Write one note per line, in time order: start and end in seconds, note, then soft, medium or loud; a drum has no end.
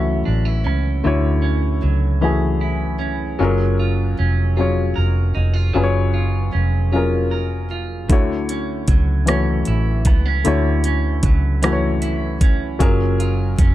0.00 0.23 C#2 medium
0.00 1.03 D3 medium
0.00 1.04 D3 medium
0.00 0.59 E3 medium
0.00 1.82 F#3 soft
0.00 1.04 A3 medium
0.00 0.64 C#4 medium
0.00 1.05 E4 medium
0.00 1.06 F#4 medium
0.00 1.07 C#5 medium
0.00 0.61 E5 medium
0.25 0.66 A1 medium
0.25 0.45 D4 medium
0.45 2.60 E4 soft
0.64 1.01 C#2 medium
0.64 1.42 C#4 medium
1.04 1.79 D2 medium
1.04 1.76 D3 medium
1.04 3.40 D3 medium
1.04 1.77 A3 medium
1.04 1.77 E4 medium
1.04 1.78 F#4 medium
1.04 1.78 C#5 medium
1.42 2.22 C#4 soft
1.82 3.36 C#2 medium
1.82 3.39 F#3 soft
2.21 2.94 E3 medium
2.21 2.94 A3 medium
2.21 2.99 C#4 soft
2.21 2.95 E4 medium
2.21 2.95 F#4 medium
2.21 2.96 G#4 medium
2.61 3.47 E4 medium
2.99 4.18 C#4 medium
3.39 4.14 F#1 medium
3.39 4.12 F#3 medium
3.39 5.73 F#3 medium
3.39 4.12 C#4 medium
3.39 4.13 F4 medium
3.39 4.13 G#4 medium
3.39 4.14 A#4 medium
3.79 4.56 F4 medium
4.19 4.93 F1 medium
4.19 6.52 C#4 medium
4.57 5.30 F#3 medium
4.57 5.30 C#4 medium
4.57 5.34 F4 soft
4.57 5.30 F4 medium
4.57 5.31 G#4 medium
4.57 5.31 C#5 medium
4.96 5.32 F1 medium
4.96 7.30 A#4 medium
5.35 5.71 F1 medium
5.35 5.53 D#4 medium
5.53 6.13 F4 soft
5.73 6.50 F#1 medium
5.73 8.88 F#3 medium
5.73 6.47 F#3 medium
5.73 6.47 C#4 medium
5.73 6.48 F4 medium
5.73 6.48 G#4 medium
5.73 5.82 B4 medium
5.83 6.52 C#5 medium
6.14 6.91 F4 soft
6.53 8.11 F1 medium
6.53 8.49 C#4 soft
6.92 7.65 F#3 medium
6.92 7.65 C#4 medium
6.92 7.70 F4 soft
6.92 7.66 F4 medium
6.92 7.66 G#4 medium
6.92 7.66 A#4 medium
7.31 8.18 A#4 soft
7.71 8.18 F4 medium
8.09 8.85 D2 medium
8.09 8.82 D3 medium
8.09 10.45 D3 medium
8.09 8.83 A3 medium
8.09 8.83 E4 medium
8.09 8.83 F#4 medium
8.09 8.84 C#5 medium
8.09 kick loud
8.09 closed hi-hat medium
8.49 9.27 C#4 soft
8.49 closed hi-hat soft
8.88 9.63 C#2 medium
8.88 11.25 F#3 soft
8.88 kick medium
8.88 closed hi-hat medium
9.26 9.99 E3 medium
9.26 10.00 A3 medium
9.26 10.06 C#4 soft
9.26 10.00 E4 medium
9.26 10.01 F#4 medium
9.26 10.01 C#5 medium
9.26 cross-stick medium
9.26 closed hi-hat medium
9.65 10.07 A1 medium
9.65 12.01 E4 medium
9.65 closed hi-hat soft
10.05 10.42 C#2 medium
10.05 10.26 B3 medium
10.05 kick medium
10.05 closed hi-hat soft
10.26 10.84 C#4 soft
10.44 11.20 D2 medium
10.44 11.17 D3 medium
10.44 12.81 D3 medium
10.44 11.18 A3 medium
10.44 11.18 E4 medium
10.44 11.19 F#4 medium
10.44 11.19 C#5 medium
10.44 closed hi-hat medium
10.84 11.62 C#4 soft
10.84 closed hi-hat soft
11.23 12.77 C#2 medium
11.23 12.80 F#3 soft
11.23 kick medium
11.23 closed hi-hat medium
11.62 12.35 E3 medium
11.62 12.36 A3 medium
11.62 12.41 C#4 medium
11.62 12.36 E4 medium
11.62 12.36 F#4 medium
11.62 11.71 B4 medium
11.62 cross-stick medium
11.62 closed hi-hat medium
11.73 12.40 C#5 medium
12.02 12.88 E4 medium
12.02 closed hi-hat soft
12.41 13.59 C#4 medium
12.41 kick medium
12.41 closed hi-hat soft
12.79 13.55 F#1 medium
12.79 13.52 F#3 medium
12.79 13.75 F#3 medium
12.79 13.53 C#4 medium
12.79 13.53 F4 medium
12.79 13.54 G#4 medium
12.79 13.54 A#4 medium
12.79 kick loud
12.79 closed hi-hat medium
13.20 13.75 F4 medium
13.20 closed hi-hat soft
13.58 13.75 F1 medium
13.58 13.75 C#4 soft
13.58 kick medium
13.58 closed hi-hat medium